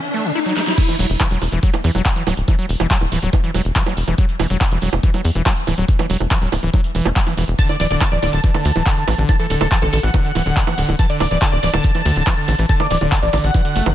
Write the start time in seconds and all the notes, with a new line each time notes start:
Already playing: riser
0.14 A3
0.25 C#3
0.35 E4
0.46 F#3
0.57 A3, snare
0.67 snare
0.77 kick, closed hi-hat, crash, shaker
0.88 E3, closed hi-hat, high bongo, shaker
0.99 E1 F#3, open hi-hat, shaker
1.10 E1, closed hi-hat, shaker
1.20 E3, kick, clap, closed hi-hat, high bongo, shaker
1.31 E1 F#3, closed hi-hat, shaker
1.42 E1, open hi-hat, high bongo, shaker
1.52 E1 E3, closed hi-hat, shaker
1.63 F#3, kick, closed hi-hat, shaker
1.74 closed hi-hat, high bongo, shaker
1.84 E2 E3, open hi-hat, shaker
1.94 E1 F#3, closed hi-hat, high bongo, shaker
2.05 kick, clap, closed hi-hat, shaker
2.16 E3, closed hi-hat, shaker
2.27 D1 F#3, open hi-hat, high bongo, shaker
2.37 D1, closed hi-hat, shaker
2.48 E3, kick, closed hi-hat, high bongo, shaker
2.58 F#3, closed hi-hat, shaker
2.69 E1, open hi-hat, shaker
2.80 E1 E3, closed hi-hat, high bongo, shaker
2.90 F#3, kick, clap, closed hi-hat, shaker
3.01 D1, closed hi-hat, high bongo, shaker
3.12 D1 E3, open hi-hat, shaker
3.22 D1 F#3, closed hi-hat, shaker
3.33 kick, closed hi-hat, high bongo, shaker
3.44 E3, closed hi-hat, shaker
3.54 E1 F#3, open hi-hat, high bongo, shaker
3.65 E1, closed hi-hat, shaker
3.75 E3, kick, clap, closed hi-hat, shaker
3.86 F#3, closed hi-hat, high bongo, shaker
3.97 E1, open hi-hat, shaker
4.06 E1 E3, closed hi-hat, high bongo, shaker
4.18 F#3, kick, closed hi-hat, shaker
4.29 closed hi-hat, shaker
4.39 E1 E3, open hi-hat, high bongo, shaker
4.50 E1 F#3, closed hi-hat, shaker
4.61 kick, clap, closed hi-hat, high bongo, shaker
4.71 E1 E3, closed hi-hat, shaker
4.81 E1 F#3, open hi-hat, shaker
4.93 E1, closed hi-hat, high bongo, shaker
5.03 E3, kick, closed hi-hat, shaker
5.14 F#3, closed hi-hat, high bongo, shaker
5.25 E2, open hi-hat, shaker
5.35 E1 E3, closed hi-hat, shaker
5.46 F#3, kick, clap, closed hi-hat, high bongo, shaker
5.55 closed hi-hat, shaker
5.67 D1 E3, open hi-hat, high bongo, shaker
5.77 D1 F#3, closed hi-hat, shaker
5.88 kick, closed hi-hat, shaker
5.99 E3, closed hi-hat, high bongo, shaker
6.10 E1 F#3, open hi-hat, shaker
6.20 E1, closed hi-hat, high bongo, shaker
6.31 E3, kick, clap, closed hi-hat, shaker
6.41 D1 F#3, closed hi-hat, shaker
6.52 D1, open hi-hat, high bongo, shaker
6.63 D1 E3, closed hi-hat, shaker
6.74 F#3, kick, closed hi-hat, high bongo, shaker
6.84 closed hi-hat, shaker
6.95 E1 E3, open hi-hat, shaker
7.05 E1 E4, closed hi-hat, high bongo, shaker
7.16 F#3, kick, clap, closed hi-hat, shaker
7.26 E3, closed hi-hat, high bongo, shaker
7.37 E1 E3, open hi-hat, shaker
7.48 E1, closed hi-hat, shaker
7.58 D3 A5, kick, closed hi-hat, ride, shaker
7.69 D3 D5, closed hi-hat, high bongo, shaker
7.80 D1 E3 D5, open hi-hat, ride, shaker
7.90 D1 D3 D5, closed hi-hat, shaker
8.01 A5, kick, clap, closed hi-hat, ride, high bongo, shaker
8.12 D1 E3 D5, closed hi-hat, shaker
8.22 D1 D3 D5, open hi-hat, ride, high bongo, shaker
8.32 D1 D3 A5, closed hi-hat, shaker
8.44 E3, kick, closed hi-hat, ride, shaker
8.54 D3, closed hi-hat, high bongo, shaker
8.65 D2 D3, open hi-hat, ride, shaker
8.76 D1 E3, closed hi-hat, high bongo, shaker
8.86 D3, kick, clap, closed hi-hat, ride, shaker
8.97 D3, closed hi-hat, shaker
9.08 A1 E3, open hi-hat, ride, high bongo, shaker
9.18 A1 D3, closed hi-hat, shaker
9.29 A5, kick, closed hi-hat, ride, high bongo, shaker
9.39 E3 A4, closed hi-hat, shaker
9.50 D1 D3 A4, open hi-hat, ride, shaker
9.61 D1 D3 A4, closed hi-hat, high bongo, shaker
9.71 E3 A5, kick, clap, closed hi-hat, ride, shaker
9.82 A1 D3 A4, closed hi-hat, high bongo, shaker
9.92 A1 D3 A4, open hi-hat, ride, shaker
10.03 A1 E3 F#5, closed hi-hat, shaker
10.14 D3, kick, closed hi-hat, ride, high bongo, shaker
10.25 D3, closed hi-hat, shaker
10.35 D1 E3, open hi-hat, ride, high bongo, shaker
10.46 D1 D3, closed hi-hat, shaker
10.57 kick, clap, closed hi-hat, ride, shaker
10.67 E3, closed hi-hat, high bongo, shaker
10.78 D1 D3, open hi-hat, ride, shaker
10.88 D1 D3, closed hi-hat, high bongo, shaker
10.99 E3 A5, kick, closed hi-hat, ride, shaker
11.10 D3 D5, closed hi-hat, shaker
11.20 D1 D3 D5, open hi-hat, ride, high bongo, shaker
11.31 D1 E3 D5, closed hi-hat, shaker
11.41 D3 A5, kick, clap, closed hi-hat, ride, high bongo, shaker
11.52 D1 D3 D5, closed hi-hat, shaker
11.63 D1 E3 D5, open hi-hat, ride, shaker
11.74 D1 D3 A5, closed hi-hat, high bongo, shaker
11.84 kick, closed hi-hat, ride, shaker
11.95 E3, closed hi-hat, high bongo, shaker
12.05 D2 D3, open hi-hat, ride, shaker
12.16 D1 D3, closed hi-hat, shaker
12.27 E3, kick, clap, closed hi-hat, ride, high bongo, shaker
12.37 D3, closed hi-hat, shaker
12.48 A1 D3, open hi-hat, ride, high bongo, shaker
12.58 A1 E3, closed hi-hat, shaker
12.69 D3 A5, kick, closed hi-hat, ride, shaker
12.80 D3 D5, closed hi-hat, high bongo, shaker
12.90 D1 E3 D5, open hi-hat, ride, shaker
13.01 D1 D3 D5, closed hi-hat, high bongo, shaker
13.12 A5, kick, clap, closed hi-hat, ride, shaker
13.22 A1 E3 D5, closed hi-hat, shaker
13.33 A1 D3 D5, open hi-hat, ride, high bongo, shaker
13.44 A1 D3 F#5, closed hi-hat, shaker
13.54 E3, kick, closed hi-hat, ride, high bongo, shaker
13.65 D3, closed hi-hat, shaker
13.75 F#1 A3, open hi-hat, ride, shaker
13.86 F#1 C#3, closed hi-hat, high bongo, shaker